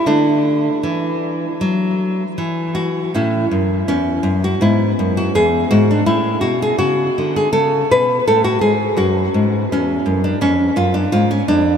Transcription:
0.06 D3 A3 D4
0.83 E3
1.61 F#3
2.38 E3
2.75 F#4
3.14 A2 C#4 E4
3.51 F#2
3.88 E2 C#4
4.23 F#2
4.44 F#4
4.61 G#2 B3 E4
4.99 F#2
5.17 F#4
5.35 E2 G#4
5.71 G#2 F#4
5.91 D4
6.06 A2 C#4 E4
6.41 B2 F#4
6.62 G#4
6.79 C#3 F#4
7.18 D3
7.36 G#4
7.53 C#3 A4
7.91 B2 B4
8.28 A2 A4
8.44 F#4
8.61 G#2 G#4
8.97 F#2 C#4 F#4
9.34 G#2
9.72 E2 C#4
10.06 F#2
10.24 D4
10.41 F2 C#4
10.76 F#2 F4
10.94 D4
11.12 G#2 F4
11.31 C#4
11.48 F2 D4

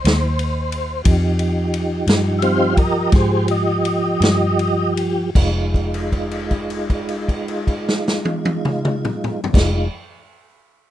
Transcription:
Already playing: C5
0.04 D#2, snare, ride
0.39 ride
0.72 ride
1.04 F2 F3 D#4 G4, kick, ride
1.39 ride
1.74 ride
2.07 G2, snare, ride
2.39 G3 C4 D#4 E5, ride
2.43 C5 F5
2.77 A#4 D#5, kick, ride
3.12 G#2 G#4 C5, kick, snare, ride
3.48 D#5, ride
3.85 ride
4.20 G2, snare, ride
4.59 ride
4.97 ride
5.35 F1 G#3 D#4 F4, kick, crash
5.74 kick, crash
5.94 crash
6.12 kick, crash
6.31 crash
6.51 kick, crash
6.70 crash
6.90 kick, crash
7.09 crash
7.28 kick, crash
7.48 crash
7.67 kick, crash
7.89 snare
8.08 snare
8.25 high tom
8.45 high tom
8.65 mid tom
8.85 mid tom
9.05 mid tom
9.24 mid tom
9.44 floor tom
9.53 F1 G#3 D#4 F4, kick, snare, crash

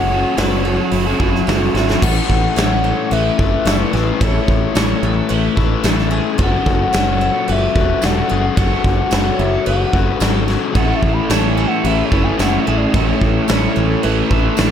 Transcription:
Already playing: F#1 C#4 F#4 A4 C#5 F#5
0.10 F#3 C#4 F#4 A4
0.36 F#1 F#3 C#4 F#4 A4 B4 C#5, snare, open hi-hat
0.64 F#3 C#4 F#4 A4
0.78 C#4 F#4 A4, muted overdriven electric guitar stroke
0.92 F#1 F#3 C#4 E4 F#4 A4, open hi-hat
1.07 C#4 F#4 A4
1.20 F#1 F#3 C#4 F#4 A4, kick
1.32 C#4 F#4 A4, muted overdriven electric guitar stroke, snare
1.47 F#1 F#3 C#4 F#4 A4, snare, open hi-hat
1.74 G#1 F#3 C#4 E4 F#4, snare
1.78 A4
1.89 C#4 F#4 A4, snare
2.01 A1 A3 C#4 E4 A4 F#5, kick, crash
2.30 A1, kick
2.56 A1 A3 C#4 E4 A4 C#5, snare, tambourine, crash
2.84 A4
3.11 A1 B4 E5, crash
3.38 F#1 C#4 E4 A4, kick
3.65 F#1 A3 C#4 E4 A4 B4, snare, tambourine, crash
3.92 A1 C#4 E4 G#4 A4, snare
4.19 A1 A3 C#4 E4 A4 C#5, kick, crash
4.23 A4
4.48 A1, kick
4.74 A1 A3 C#4 E4 A4 C#5, snare, tambourine, crash
5.03 A1 A4
5.29 A1 B4, crash
5.56 A1 C#4 E4 A4, kick
5.84 A1 A3 C#4 E4 A4, snare, tambourine, crash
5.99 snare
6.10 C#4 E4 G#4 A4
6.37 F#1 F#3 C#4 F#4 A4, kick, crash
6.43 F#5
6.66 F#1, kick
6.92 F#1 F#3 C#4 F#4 A4 C#5, snare, tambourine, crash
7.21 A4
7.48 F#1 B4 E5, crash
7.75 E1 C#4 F#4 A4, kick
8.01 E1 F#3 C#4 F#4 A4 F#5, snare, tambourine, crash
8.29 F#1 F#4 G#4 A4
8.34 C#4
8.56 F#1 F#3 C#4 F#4 A4 F#5, kick, crash
8.84 F#1, kick
9.10 F#1 F#3 C#4 F#4 A4 C#5, snare, tambourine, crash
9.39 F#1 A4 E5
9.65 F#1 B4 F#5, crash
9.93 F#1 C#4 F#4 A4, kick
10.20 G#1 F#3 C#4 F#4 A4, snare, tambourine, crash
10.47 C#4 F#4 G#4 A4, snare
10.74 A1 A3 C#4 E4 A4 F#5, kick, crash
10.95 E5
11.02 A1, kick
11.13 B5
11.29 A1 A3 C#4 E4 A4 C#5 A5, snare, tambourine, crash
11.49 G#5
11.57 A4
11.67 F#5
11.84 A1 A3 C#4 E4 A4 B4 E5, crash
12.05 C#5
12.11 F#1 C#4 E4 A4, kick
12.23 G#5
12.38 F#1 A3 C#4 E4 A4 F#5, snare, tambourine, crash
12.60 E5
12.65 A1 C#4 E4 G#4 A4
12.77 D5
12.94 A1 A3 C#4 E4 A4 C#5, kick, crash
13.21 A1, kick
13.47 A1 A3 C#4 E4 A4 C#5, snare, tambourine, crash
13.76 A1 A4
14.03 A1 A3 C#4 E4 A4 B4, crash
14.31 A1 C#4 E4 A4, kick
14.57 A1 A3 C#4 E4 A4, snare, tambourine, crash

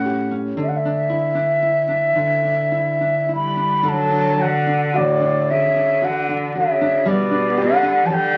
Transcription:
Already playing: A2 C#4 F#5
0.06 G4
0.31 C#4
0.57 D3
0.62 E5
0.68 F#5
0.76 E5
0.85 D4
1.10 E4
1.35 D4
1.62 E4
1.88 D4
2.15 D3
2.44 D4
2.72 E4
3.01 D4
3.29 E4
3.34 G3 B5
3.57 D4
3.83 D3
3.89 F#3 A5
4.09 D4
4.37 F#4 F#5
4.43 D3
4.67 D4
4.94 A2 F#4 D5
5.21 D4
5.50 C#3 E5
5.76 D4
6.02 F#4 F#5
6.06 D3
6.29 D4
6.55 C#3 F#4 E5
6.81 D4
7.06 B2 G3 D5
7.31 D4
7.57 D3 G4
7.62 F#5
7.83 D4
8.06 F#3 A5
8.10 D3 G4 G5

